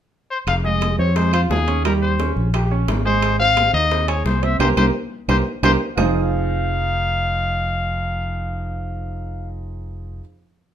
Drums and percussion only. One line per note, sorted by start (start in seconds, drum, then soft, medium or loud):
0.47 high bongo medium
0.47 high conga soft
0.47 high timbale medium
0.47 claves medium
0.65 high bongo soft
0.65 high conga soft
0.81 high bongo medium
0.81 high conga medium
0.81 high timbale medium
0.81 claves medium
0.99 high bongo soft
0.99 high conga soft
1.16 high bongo medium
1.16 high timbale medium
1.33 high timbale medium
1.33 claves medium
1.50 high bongo medium
1.50 low bongo medium
1.50 high conga medium
1.50 low timbale medium
1.68 high bongo soft
1.68 high conga medium
1.68 high timbale medium
1.85 high bongo medium
1.85 high conga soft
1.85 high timbale medium
1.85 claves medium
2.02 high bongo soft
2.02 high conga soft
2.19 high bongo medium
2.19 high conga medium
2.19 high timbale medium
2.37 high bongo soft
2.37 high conga soft
2.54 high bongo medium
2.54 high conga soft
2.54 high timbale medium
2.54 claves medium
2.71 high bongo soft
2.71 high conga soft
2.88 high bongo medium
2.88 low bongo medium
2.88 high conga medium
2.88 high timbale medium
3.06 high conga medium
3.22 high bongo medium
3.22 high timbale medium
3.22 claves medium
3.40 high bongo soft
3.40 high conga soft
3.57 high bongo medium
3.57 high conga medium
3.57 high timbale medium
3.57 claves medium
3.74 high bongo soft
3.74 high conga soft
3.91 high bongo medium
3.91 high conga soft
3.91 high timbale medium
4.08 high conga soft
4.08 high timbale medium
4.08 claves medium
4.26 high bongo medium
4.26 low bongo medium
4.26 high conga medium
4.43 high bongo soft
4.43 high conga medium
4.43 high timbale medium
4.60 low bongo medium
4.60 high conga medium
4.60 high timbale loud
4.60 claves medium
4.77 low bongo medium
4.77 high conga medium
4.77 high timbale medium
4.77 claves medium
5.29 low bongo loud
5.29 high conga medium
5.29 high timbale medium
5.29 claves medium
5.63 low bongo loud
5.63 high conga medium
5.63 high timbale loud
5.63 claves loud
5.98 low bongo medium
5.98 low conga medium
5.98 low timbale medium
5.98 claves loud